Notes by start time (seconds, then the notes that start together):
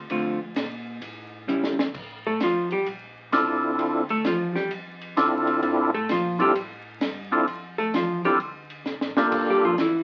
0.10 F2 D3 A3 C4 F4, kick, ride
0.56 A#2, kick, snare, hi-hat pedal, ride
1.02 A2, kick, ride
1.48 C#3 G3 C#4 E4, hi-hat pedal
1.64 snare
1.79 snare
1.94 A2, kick, crash
2.27 A3 A4
2.40 F2 F3 F4, kick, snare, hi-hat pedal, ride
2.71 G3 G4, ride
2.86 A#1, kick, ride
3.32 C2 C4 D4 E4 F4 A4, kick, snare, hi-hat pedal, ride
3.79 D2, kick, ride
4.09 A3 A4, ride
4.24 E2 F3 F4, kick, snare, hi-hat pedal, ride
4.55 G3 G4, snare
4.71 F2, kick, ride
5.01 ride
5.16 D2 C4 D4 E4 F4 A4, kick, snare, hi-hat pedal, ride
5.47 ride
5.62 A2 C4 D4 E4 F4 A4, kick, ride
5.94 A3 A4
6.09 A#2 F3 F4, kick, snare, hi-hat pedal, ride
6.39 G3 C4 D4 E4 F4 G4 A4, ride
6.55 A2, kick, ride
7.01 G2, kick, snare, hi-hat pedal, ride
7.32 C4 D4 E4 F4 A4
7.47 F2, kick, ride
7.78 A3 A4
7.94 E2 F3 F4, kick, snare, hi-hat pedal, ride
8.24 G3 C4 D4 E4 F4 G4 A4, ride
8.39 D2, kick, ride
8.70 ride
8.85 C2, snare, hi-hat pedal
9.01 A1, snare
9.16 F1 A#3 D4 F4 G4 A4, snare
9.32 A#1, kick, crash
9.50 G3 G4
9.65 F3 F4
9.78 G1 E3 E4, kick, snare, hi-hat pedal, ride